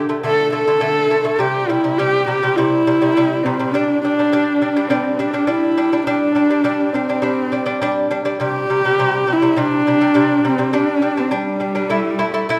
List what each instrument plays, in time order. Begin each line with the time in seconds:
0.09 lute D3 A3
0.23 lute D3 A3, horsehead fiddle A4
0.52 lute D3 A3, horsehead fiddle A4
0.67 lute D3 A3
0.81 lute D3 A3
1.10 lute D3 A3
1.24 lute D3 A3
1.36 lute C3, horsehead fiddle G4 A4
1.40 lute G3
1.69 lute C3 G3, horsehead fiddle E4
1.84 lute C3 G3
1.98 lute C3 G3, horsehead fiddle G4
2.27 lute C3 G3, horsehead fiddle G4
2.43 lute C3 G3
2.56 lute C3 G3, horsehead fiddle E4
2.87 lute C3 G3
3.01 lute C3 G3
3.17 lute C3 G3
3.43 lute C3 G3, horsehead fiddle C4
3.59 lute C3 G3
3.71 lute G3 D4, horsehead fiddle D4
4.01 lute G3 D4, horsehead fiddle D4
4.19 lute G3 D4
4.33 lute G3 D4
4.62 lute G3 D4
4.76 lute G3 D4
4.88 lute G3 D4, horsehead fiddle C4
5.18 lute G3 D4, horsehead fiddle D4
5.34 lute G3 D4
5.47 lute G3 D4, horsehead fiddle E4
5.77 lute G3 D4
5.93 lute G3 D4
6.06 lute G3 D4, horsehead fiddle D4
6.35 lute G3 D4
6.50 lute G3 D4
6.64 lute G3 D4
6.93 lute G3 D4, horsehead fiddle C4
7.09 lute G3 D4
7.22 lute G3 D4
7.52 lute G3 D4
7.66 lute G3 D4
7.81 lute G3 D4
8.11 lute G3 D4
8.25 lute G3 D4
8.40 lute C3 G3, horsehead fiddle G4
8.70 lute C3 G3
8.85 lute C3 G3
8.99 lute C3 G3
9.27 lute C3 G3
9.32 horsehead fiddle E4
9.42 lute C3 G3
9.56 lute C3 G3, horsehead fiddle D4
9.87 lute C3 G3
10.01 lute C3 G3
10.14 lute C3 G3
10.45 lute C3 G3, horsehead fiddle C4
10.58 lute C3 G3
10.73 lute G3 D4, horsehead fiddle D4
11.02 lute G3 D4
11.17 lute G3 D4, horsehead fiddle C4
11.31 lute G3 D4, horsehead fiddle G3
11.60 lute G3 D4
11.75 lute G3 D4
11.90 lute A3 E4
12.19 lute A3 E4
12.34 lute A3 E4
12.49 lute A3 E4